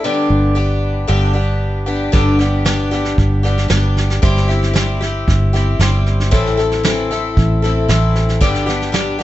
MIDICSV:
0, 0, Header, 1, 4, 480
1, 0, Start_track
1, 0, Tempo, 523104
1, 34, Time_signature, 4, 2, 24, 8
1, 8469, End_track
2, 0, Start_track
2, 0, Title_t, "Twelve-string acoustic guitar"
2, 0, Program_c, 0, 25
2, 37, Note_on_c, 0, 43, 62
2, 38, Note_on_c, 0, 55, 69
2, 40, Note_on_c, 0, 50, 69
2, 45, Note_on_c, 0, 59, 68
2, 47, Note_on_c, 0, 67, 77
2, 48, Note_on_c, 0, 62, 75
2, 494, Note_off_c, 0, 55, 0
2, 503, Note_off_c, 0, 59, 0
2, 505, Note_on_c, 0, 55, 52
2, 508, Note_off_c, 0, 62, 0
2, 514, Note_on_c, 0, 59, 57
2, 517, Note_off_c, 0, 43, 0
2, 517, Note_off_c, 0, 67, 0
2, 518, Note_off_c, 0, 50, 0
2, 519, Note_on_c, 0, 62, 60
2, 528, Note_on_c, 0, 67, 57
2, 982, Note_off_c, 0, 55, 0
2, 985, Note_off_c, 0, 59, 0
2, 985, Note_off_c, 0, 62, 0
2, 987, Note_on_c, 0, 43, 66
2, 991, Note_off_c, 0, 67, 0
2, 991, Note_on_c, 0, 50, 62
2, 993, Note_on_c, 0, 55, 72
2, 996, Note_on_c, 0, 59, 69
2, 996, Note_on_c, 0, 62, 77
2, 1002, Note_on_c, 0, 67, 82
2, 1212, Note_off_c, 0, 67, 0
2, 1216, Note_off_c, 0, 62, 0
2, 1223, Note_on_c, 0, 67, 45
2, 1225, Note_off_c, 0, 59, 0
2, 1227, Note_on_c, 0, 62, 45
2, 1232, Note_off_c, 0, 43, 0
2, 1232, Note_off_c, 0, 55, 0
2, 1234, Note_off_c, 0, 50, 0
2, 1236, Note_on_c, 0, 59, 47
2, 1243, Note_on_c, 0, 55, 38
2, 1697, Note_off_c, 0, 67, 0
2, 1707, Note_off_c, 0, 62, 0
2, 1708, Note_on_c, 0, 67, 49
2, 1712, Note_off_c, 0, 59, 0
2, 1717, Note_off_c, 0, 55, 0
2, 1718, Note_on_c, 0, 62, 46
2, 1723, Note_on_c, 0, 59, 45
2, 1728, Note_on_c, 0, 55, 39
2, 1946, Note_off_c, 0, 55, 0
2, 1946, Note_off_c, 0, 59, 0
2, 1946, Note_on_c, 0, 43, 75
2, 1952, Note_off_c, 0, 62, 0
2, 1953, Note_off_c, 0, 67, 0
2, 1953, Note_on_c, 0, 50, 70
2, 1957, Note_on_c, 0, 55, 73
2, 1957, Note_on_c, 0, 59, 85
2, 1963, Note_on_c, 0, 62, 75
2, 1965, Note_on_c, 0, 67, 81
2, 2180, Note_off_c, 0, 67, 0
2, 2187, Note_off_c, 0, 62, 0
2, 2191, Note_on_c, 0, 67, 53
2, 2192, Note_off_c, 0, 43, 0
2, 2194, Note_off_c, 0, 59, 0
2, 2195, Note_off_c, 0, 50, 0
2, 2197, Note_off_c, 0, 55, 0
2, 2198, Note_on_c, 0, 62, 49
2, 2205, Note_on_c, 0, 59, 45
2, 2209, Note_on_c, 0, 55, 41
2, 2419, Note_off_c, 0, 55, 0
2, 2425, Note_off_c, 0, 59, 0
2, 2430, Note_on_c, 0, 55, 55
2, 2432, Note_off_c, 0, 62, 0
2, 2434, Note_off_c, 0, 67, 0
2, 2436, Note_on_c, 0, 59, 62
2, 2443, Note_on_c, 0, 62, 64
2, 2449, Note_on_c, 0, 67, 69
2, 2660, Note_off_c, 0, 67, 0
2, 2664, Note_off_c, 0, 62, 0
2, 2671, Note_on_c, 0, 67, 51
2, 2674, Note_off_c, 0, 55, 0
2, 2675, Note_on_c, 0, 62, 45
2, 2677, Note_off_c, 0, 59, 0
2, 2688, Note_on_c, 0, 59, 42
2, 2692, Note_on_c, 0, 55, 42
2, 3137, Note_off_c, 0, 67, 0
2, 3146, Note_off_c, 0, 62, 0
2, 3148, Note_on_c, 0, 67, 51
2, 3154, Note_off_c, 0, 59, 0
2, 3157, Note_off_c, 0, 55, 0
2, 3157, Note_on_c, 0, 62, 50
2, 3165, Note_on_c, 0, 59, 43
2, 3168, Note_on_c, 0, 55, 39
2, 3368, Note_off_c, 0, 55, 0
2, 3376, Note_off_c, 0, 59, 0
2, 3379, Note_on_c, 0, 55, 52
2, 3380, Note_off_c, 0, 62, 0
2, 3384, Note_off_c, 0, 67, 0
2, 3387, Note_on_c, 0, 59, 50
2, 3391, Note_on_c, 0, 62, 57
2, 3395, Note_on_c, 0, 67, 56
2, 3861, Note_off_c, 0, 55, 0
2, 3871, Note_off_c, 0, 67, 0
2, 3872, Note_off_c, 0, 59, 0
2, 3872, Note_on_c, 0, 55, 74
2, 3874, Note_off_c, 0, 62, 0
2, 3876, Note_on_c, 0, 60, 77
2, 3878, Note_on_c, 0, 64, 83
2, 3882, Note_on_c, 0, 67, 90
2, 4097, Note_off_c, 0, 67, 0
2, 4107, Note_off_c, 0, 64, 0
2, 4108, Note_on_c, 0, 67, 53
2, 4115, Note_off_c, 0, 55, 0
2, 4117, Note_off_c, 0, 60, 0
2, 4118, Note_on_c, 0, 64, 53
2, 4129, Note_on_c, 0, 60, 46
2, 4336, Note_off_c, 0, 60, 0
2, 4343, Note_on_c, 0, 55, 51
2, 4347, Note_on_c, 0, 60, 59
2, 4348, Note_off_c, 0, 64, 0
2, 4353, Note_off_c, 0, 67, 0
2, 4359, Note_on_c, 0, 64, 55
2, 4367, Note_on_c, 0, 67, 65
2, 4583, Note_off_c, 0, 67, 0
2, 4591, Note_off_c, 0, 55, 0
2, 4593, Note_off_c, 0, 60, 0
2, 4594, Note_on_c, 0, 67, 46
2, 4599, Note_off_c, 0, 64, 0
2, 4608, Note_on_c, 0, 64, 46
2, 4616, Note_on_c, 0, 60, 46
2, 5065, Note_off_c, 0, 67, 0
2, 5073, Note_off_c, 0, 64, 0
2, 5076, Note_on_c, 0, 67, 49
2, 5083, Note_off_c, 0, 60, 0
2, 5084, Note_on_c, 0, 64, 51
2, 5094, Note_on_c, 0, 60, 44
2, 5313, Note_off_c, 0, 60, 0
2, 5317, Note_off_c, 0, 67, 0
2, 5319, Note_on_c, 0, 55, 52
2, 5321, Note_off_c, 0, 64, 0
2, 5324, Note_on_c, 0, 60, 57
2, 5334, Note_on_c, 0, 64, 55
2, 5339, Note_on_c, 0, 67, 57
2, 5785, Note_off_c, 0, 60, 0
2, 5791, Note_off_c, 0, 55, 0
2, 5791, Note_off_c, 0, 64, 0
2, 5793, Note_on_c, 0, 45, 80
2, 5795, Note_on_c, 0, 52, 84
2, 5796, Note_on_c, 0, 60, 86
2, 5802, Note_on_c, 0, 64, 87
2, 5806, Note_off_c, 0, 67, 0
2, 5810, Note_on_c, 0, 69, 79
2, 6021, Note_off_c, 0, 69, 0
2, 6032, Note_on_c, 0, 69, 55
2, 6034, Note_off_c, 0, 64, 0
2, 6035, Note_off_c, 0, 45, 0
2, 6036, Note_off_c, 0, 52, 0
2, 6037, Note_off_c, 0, 60, 0
2, 6045, Note_on_c, 0, 64, 48
2, 6051, Note_on_c, 0, 60, 43
2, 6270, Note_off_c, 0, 60, 0
2, 6271, Note_on_c, 0, 52, 60
2, 6275, Note_off_c, 0, 69, 0
2, 6278, Note_off_c, 0, 64, 0
2, 6281, Note_on_c, 0, 60, 67
2, 6290, Note_on_c, 0, 64, 62
2, 6292, Note_on_c, 0, 69, 68
2, 6510, Note_off_c, 0, 69, 0
2, 6514, Note_off_c, 0, 52, 0
2, 6519, Note_off_c, 0, 60, 0
2, 6521, Note_on_c, 0, 69, 54
2, 6524, Note_off_c, 0, 64, 0
2, 6533, Note_on_c, 0, 64, 50
2, 6543, Note_on_c, 0, 60, 45
2, 6984, Note_off_c, 0, 69, 0
2, 6995, Note_on_c, 0, 69, 49
2, 7000, Note_off_c, 0, 64, 0
2, 7011, Note_off_c, 0, 60, 0
2, 7011, Note_on_c, 0, 64, 50
2, 7021, Note_on_c, 0, 60, 44
2, 7232, Note_off_c, 0, 60, 0
2, 7235, Note_on_c, 0, 52, 51
2, 7236, Note_off_c, 0, 69, 0
2, 7239, Note_off_c, 0, 64, 0
2, 7243, Note_on_c, 0, 60, 54
2, 7250, Note_on_c, 0, 64, 64
2, 7256, Note_on_c, 0, 69, 67
2, 7713, Note_on_c, 0, 43, 84
2, 7716, Note_off_c, 0, 52, 0
2, 7718, Note_on_c, 0, 50, 74
2, 7719, Note_off_c, 0, 60, 0
2, 7720, Note_on_c, 0, 55, 81
2, 7722, Note_off_c, 0, 64, 0
2, 7723, Note_on_c, 0, 59, 75
2, 7726, Note_off_c, 0, 69, 0
2, 7726, Note_on_c, 0, 62, 86
2, 7730, Note_on_c, 0, 67, 87
2, 7936, Note_off_c, 0, 67, 0
2, 7944, Note_off_c, 0, 62, 0
2, 7947, Note_on_c, 0, 67, 53
2, 7949, Note_off_c, 0, 59, 0
2, 7955, Note_off_c, 0, 43, 0
2, 7955, Note_on_c, 0, 62, 52
2, 7958, Note_off_c, 0, 50, 0
2, 7959, Note_off_c, 0, 55, 0
2, 7960, Note_on_c, 0, 59, 49
2, 7972, Note_on_c, 0, 55, 44
2, 8175, Note_off_c, 0, 55, 0
2, 8184, Note_off_c, 0, 59, 0
2, 8186, Note_on_c, 0, 55, 56
2, 8190, Note_off_c, 0, 62, 0
2, 8193, Note_off_c, 0, 67, 0
2, 8195, Note_on_c, 0, 59, 52
2, 8201, Note_on_c, 0, 62, 63
2, 8205, Note_on_c, 0, 67, 69
2, 8417, Note_off_c, 0, 67, 0
2, 8422, Note_off_c, 0, 62, 0
2, 8428, Note_on_c, 0, 67, 49
2, 8432, Note_off_c, 0, 55, 0
2, 8432, Note_off_c, 0, 59, 0
2, 8433, Note_on_c, 0, 62, 45
2, 8469, Note_off_c, 0, 62, 0
2, 8469, Note_off_c, 0, 67, 0
2, 8469, End_track
3, 0, Start_track
3, 0, Title_t, "Fingered electric bass"
3, 0, Program_c, 1, 33
3, 37, Note_on_c, 1, 31, 75
3, 150, Note_off_c, 1, 31, 0
3, 275, Note_on_c, 1, 31, 76
3, 960, Note_off_c, 1, 31, 0
3, 1002, Note_on_c, 1, 31, 73
3, 1924, Note_off_c, 1, 31, 0
3, 1962, Note_on_c, 1, 31, 73
3, 2884, Note_off_c, 1, 31, 0
3, 2916, Note_on_c, 1, 31, 86
3, 3373, Note_off_c, 1, 31, 0
3, 3395, Note_on_c, 1, 31, 76
3, 3853, Note_off_c, 1, 31, 0
3, 3882, Note_on_c, 1, 31, 83
3, 4803, Note_off_c, 1, 31, 0
3, 4845, Note_on_c, 1, 31, 82
3, 5298, Note_off_c, 1, 31, 0
3, 5315, Note_on_c, 1, 31, 81
3, 5807, Note_off_c, 1, 31, 0
3, 5807, Note_on_c, 1, 33, 86
3, 6726, Note_off_c, 1, 33, 0
3, 6763, Note_on_c, 1, 33, 92
3, 7216, Note_off_c, 1, 33, 0
3, 7238, Note_on_c, 1, 33, 82
3, 7719, Note_off_c, 1, 33, 0
3, 7719, Note_on_c, 1, 31, 78
3, 8469, Note_off_c, 1, 31, 0
3, 8469, End_track
4, 0, Start_track
4, 0, Title_t, "Drums"
4, 1957, Note_on_c, 9, 38, 22
4, 1959, Note_on_c, 9, 36, 74
4, 2049, Note_off_c, 9, 38, 0
4, 2051, Note_off_c, 9, 36, 0
4, 2198, Note_on_c, 9, 38, 23
4, 2290, Note_off_c, 9, 38, 0
4, 2437, Note_on_c, 9, 38, 81
4, 2529, Note_off_c, 9, 38, 0
4, 2676, Note_on_c, 9, 38, 24
4, 2768, Note_off_c, 9, 38, 0
4, 2796, Note_on_c, 9, 38, 24
4, 2888, Note_off_c, 9, 38, 0
4, 2914, Note_on_c, 9, 38, 24
4, 2919, Note_on_c, 9, 36, 59
4, 3006, Note_off_c, 9, 38, 0
4, 3010, Note_off_c, 9, 36, 0
4, 3163, Note_on_c, 9, 38, 25
4, 3254, Note_off_c, 9, 38, 0
4, 3281, Note_on_c, 9, 38, 24
4, 3372, Note_off_c, 9, 38, 0
4, 3394, Note_on_c, 9, 38, 81
4, 3486, Note_off_c, 9, 38, 0
4, 3641, Note_on_c, 9, 38, 26
4, 3733, Note_off_c, 9, 38, 0
4, 3761, Note_on_c, 9, 38, 27
4, 3853, Note_off_c, 9, 38, 0
4, 3881, Note_on_c, 9, 36, 76
4, 3884, Note_on_c, 9, 38, 24
4, 3973, Note_off_c, 9, 36, 0
4, 3976, Note_off_c, 9, 38, 0
4, 4008, Note_on_c, 9, 38, 25
4, 4100, Note_off_c, 9, 38, 0
4, 4127, Note_on_c, 9, 38, 25
4, 4219, Note_off_c, 9, 38, 0
4, 4244, Note_on_c, 9, 38, 25
4, 4336, Note_off_c, 9, 38, 0
4, 4363, Note_on_c, 9, 38, 75
4, 4454, Note_off_c, 9, 38, 0
4, 4605, Note_on_c, 9, 38, 26
4, 4697, Note_off_c, 9, 38, 0
4, 4843, Note_on_c, 9, 36, 54
4, 4848, Note_on_c, 9, 38, 25
4, 4935, Note_off_c, 9, 36, 0
4, 4939, Note_off_c, 9, 38, 0
4, 5088, Note_on_c, 9, 38, 24
4, 5180, Note_off_c, 9, 38, 0
4, 5327, Note_on_c, 9, 38, 81
4, 5419, Note_off_c, 9, 38, 0
4, 5565, Note_on_c, 9, 38, 25
4, 5656, Note_off_c, 9, 38, 0
4, 5690, Note_on_c, 9, 38, 28
4, 5782, Note_off_c, 9, 38, 0
4, 5805, Note_on_c, 9, 36, 78
4, 5806, Note_on_c, 9, 38, 24
4, 5897, Note_off_c, 9, 36, 0
4, 5898, Note_off_c, 9, 38, 0
4, 5928, Note_on_c, 9, 38, 22
4, 6019, Note_off_c, 9, 38, 0
4, 6043, Note_on_c, 9, 38, 25
4, 6135, Note_off_c, 9, 38, 0
4, 6161, Note_on_c, 9, 38, 24
4, 6253, Note_off_c, 9, 38, 0
4, 6282, Note_on_c, 9, 38, 89
4, 6374, Note_off_c, 9, 38, 0
4, 6526, Note_on_c, 9, 38, 27
4, 6618, Note_off_c, 9, 38, 0
4, 6763, Note_on_c, 9, 36, 61
4, 6763, Note_on_c, 9, 38, 27
4, 6855, Note_off_c, 9, 36, 0
4, 6855, Note_off_c, 9, 38, 0
4, 7006, Note_on_c, 9, 38, 25
4, 7098, Note_off_c, 9, 38, 0
4, 7242, Note_on_c, 9, 38, 75
4, 7334, Note_off_c, 9, 38, 0
4, 7481, Note_on_c, 9, 38, 25
4, 7573, Note_off_c, 9, 38, 0
4, 7604, Note_on_c, 9, 38, 25
4, 7695, Note_off_c, 9, 38, 0
4, 7720, Note_on_c, 9, 36, 73
4, 7721, Note_on_c, 9, 38, 24
4, 7812, Note_off_c, 9, 36, 0
4, 7812, Note_off_c, 9, 38, 0
4, 7841, Note_on_c, 9, 38, 23
4, 7932, Note_off_c, 9, 38, 0
4, 7968, Note_on_c, 9, 38, 24
4, 8060, Note_off_c, 9, 38, 0
4, 8087, Note_on_c, 9, 38, 24
4, 8179, Note_off_c, 9, 38, 0
4, 8202, Note_on_c, 9, 38, 77
4, 8294, Note_off_c, 9, 38, 0
4, 8469, End_track
0, 0, End_of_file